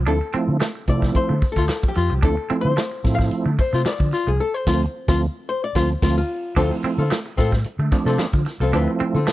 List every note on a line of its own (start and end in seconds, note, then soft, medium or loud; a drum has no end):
0.06 0.19 D2 loud
0.06 0.19 F3 medium
0.06 0.19 A3 medium
0.06 0.19 C4 medium
0.06 0.15 D4 medium
0.06 0.19 E4 medium
0.06 0.85 A4 medium
0.06 closed hi-hat medium
0.21 muted clean electric guitar stroke soft
0.33 0.57 F3 medium
0.33 0.57 A3 medium
0.33 0.42 C4 medium
0.33 0.57 C4 medium
0.33 0.57 E4 medium
0.33 muted fingered electric bass stroke soft
0.33 closed hi-hat medium
0.48 0.60 D3 loud
0.60 0.69 A3 medium
0.60 snare loud
0.60 clap medium
0.60 closed hi-hat medium
0.75 muted clean electric guitar stroke soft
0.87 1.12 C3 medium
0.87 1.34 F3 medium
0.87 1.35 A3 medium
0.87 1.35 C4 medium
0.87 1.35 E4 medium
0.87 1.14 D5 loud
0.87 kick loud
0.87 closed hi-hat medium
1.02 1.10 G3 medium
1.02 kick medium
1.02 snare soft
1.15 1.49 C5 medium
1.15 muted fingered electric bass stroke soft
1.15 kick loud
1.15 closed hi-hat medium
1.29 1.41 D3 medium
1.29 1.37 A3 medium
1.42 muted clean electric guitar stroke soft
1.42 kick loud
1.42 open hi-hat medium
1.52 1.85 A4 medium
1.56 1.67 D2 medium
1.56 1.64 A3 medium
1.56 1.65 F4 medium
1.56 kick medium
1.56 snare soft
1.69 snare loud
1.69 clap medium
1.69 closed hi-hat medium
1.83 1.91 F3 medium
1.83 kick loud
1.88 2.24 G4 medium
1.95 2.09 F2 loud
1.95 2.14 F4 loud
1.95 muted clean electric guitar stroke soft
1.95 snare soft
1.95 closed hi-hat medium
2.10 2.23 C2 medium
2.10 2.18 F3 medium
2.22 2.36 D2 loud
2.22 2.35 F3 medium
2.22 2.36 A3 medium
2.22 2.36 C4 medium
2.22 2.31 D4 medium
2.22 2.36 E4 medium
2.22 2.61 A4 loud
2.22 kick loud
2.22 closed hi-hat medium
2.37 muted clean electric guitar stroke soft
2.50 2.73 F3 medium
2.50 2.74 A3 medium
2.50 2.58 C4 medium
2.50 2.74 C4 medium
2.50 2.74 E4 medium
2.50 muted fingered electric bass stroke soft
2.50 closed hi-hat medium
2.61 2.76 D3 loud
2.61 3.11 C5 loud
2.77 2.86 A3 medium
2.77 snare loud
2.77 clap medium
2.77 closed hi-hat medium
2.91 muted clean electric guitar stroke soft
3.04 3.28 A2 medium
3.04 3.51 F3 medium
3.04 3.51 A3 medium
3.04 3.51 C4 medium
3.04 3.51 E4 medium
3.04 kick loud
3.04 snare soft
3.04 closed hi-hat medium
3.15 3.26 G3 medium
3.15 3.39 F5 loud
3.15 kick medium
3.20 snare soft
3.31 muted fingered electric bass stroke soft
3.31 closed hi-hat medium
3.46 3.57 D3 medium
3.46 3.53 A3 medium
3.58 3.87 C5 loud
3.58 muted clean electric guitar stroke soft
3.58 kick loud
3.58 open hi-hat medium
3.73 3.84 C3 loud
3.73 3.80 A3 medium
3.73 3.82 F4 loud
3.73 snare soft
3.86 4.29 D5 loud
3.86 snare loud
3.86 clap medium
3.86 closed hi-hat medium
4.00 4.11 D3 medium
4.00 4.07 F3 medium
4.00 kick loud
4.12 4.30 F4 loud
4.12 muted clean electric guitar stroke soft
4.12 snare soft
4.12 closed hi-hat medium
4.27 4.38 C2 medium
4.27 4.35 F3 medium
4.27 4.41 G#4 medium
4.40 4.54 A4 loud
4.54 5.08 C5 medium
4.67 4.85 D2 medium
4.67 4.86 F3 loud
4.67 4.86 A3 loud
4.67 4.86 C4 loud
4.67 4.81 F4 loud
4.67 kick loud
4.67 snare loud
4.67 crash medium
5.08 5.27 D2 loud
5.08 5.27 F3 medium
5.08 5.27 A3 medium
5.08 5.27 C4 medium
5.08 5.22 F4 loud
5.08 kick loud
5.08 snare loud
5.49 5.63 C5 loud
5.64 5.76 D5 medium
5.75 5.94 D2 loud
5.75 5.94 F3 loud
5.75 5.94 A3 loud
5.75 5.94 C4 medium
5.75 5.89 F4 loud
5.75 6.18 C5 loud
5.75 kick loud
5.75 snare loud
6.02 6.21 D2 loud
6.02 6.21 F3 medium
6.02 6.21 A3 loud
6.02 6.21 C4 loud
6.02 6.16 F4 loud
6.02 kick loud
6.02 snare loud
6.02 crash medium
6.18 6.54 F4 medium
6.56 6.69 D2 loud
6.56 7.03 F3 medium
6.56 7.03 A3 medium
6.56 6.73 C4 loud
6.56 7.03 C4 medium
6.56 6.65 D4 medium
6.56 6.64 D4 medium
6.56 6.71 F4 medium
6.56 6.70 A4 loud
6.56 kick loud
6.56 crash loud
6.64 7.07 E4 medium
6.71 muted hollow-body jazz guitar stroke soft
6.71 muted clean electric guitar stroke soft
6.83 6.93 C4 medium
6.83 muted fingered electric bass stroke soft
6.83 muted hollow-body jazz guitar stroke soft
6.83 closed hi-hat medium
6.98 7.09 D3 loud
6.98 7.10 C4 medium
6.98 7.10 F4 medium
6.98 7.10 A4 medium
7.11 7.19 A3 loud
7.11 muted hollow-body jazz guitar stroke medium
7.11 snare loud
7.11 clap medium
7.11 closed hi-hat medium
7.26 muted clean electric guitar stroke soft
7.26 muted hollow-body jazz guitar stroke soft
7.37 7.62 A2 medium
7.37 7.54 C4 medium
7.37 7.52 F4 medium
7.37 7.51 A4 loud
7.37 kick loud
7.37 snare soft
7.37 closed hi-hat medium
7.52 7.60 G3 medium
7.52 muted hollow-body jazz guitar stroke soft
7.52 kick medium
7.52 snare soft
7.64 muted fingered electric bass stroke soft
7.64 muted hollow-body jazz guitar stroke soft
7.64 closed hi-hat medium
7.79 7.90 D3 medium
7.79 7.87 A3 medium
7.79 muted hollow-body jazz guitar stroke soft
7.91 8.27 F3 medium
7.91 8.27 A3 medium
7.91 8.27 C4 medium
7.91 8.27 D4 medium
7.91 muted clean electric guitar stroke soft
7.91 kick medium
7.91 clap medium
7.91 open hi-hat medium
8.06 8.17 C3 medium
8.06 8.14 A3 medium
8.06 8.18 C4 medium
8.06 8.19 F4 medium
8.06 8.19 A4 medium
8.06 snare soft
8.19 muted hollow-body jazz guitar stroke soft
8.19 snare loud
8.19 clap medium
8.19 closed hi-hat medium
8.33 8.45 D3 medium
8.33 8.41 F3 medium
8.33 muted hollow-body jazz guitar stroke soft
8.33 kick loud
8.46 muted clean electric guitar stroke soft
8.46 snare soft
8.46 closed hi-hat medium
8.60 8.71 C2 medium
8.60 8.68 F3 medium
8.60 8.72 C4 medium
8.60 8.73 F4 medium
8.60 8.75 A4 medium
8.73 8.86 D2 loud
8.73 9.20 F3 medium
8.73 9.19 A3 medium
8.73 9.20 C4 medium
8.73 8.90 C4 medium
8.73 8.82 D4 medium
8.73 9.20 E4 loud
8.73 8.90 F4 medium
8.73 8.91 B4 medium
8.73 closed hi-hat medium
8.88 muted clean electric guitar stroke soft
9.00 9.09 C4 medium
9.00 muted hollow-body jazz guitar stroke medium
9.00 muted fingered electric bass stroke soft
9.00 closed hi-hat medium
9.14 9.26 D3 loud
9.14 9.27 C4 medium
9.14 9.27 F4 medium
9.14 9.26 A4 medium
9.27 9.33 A3 medium
9.27 snare loud
9.27 clap medium
9.27 closed hi-hat medium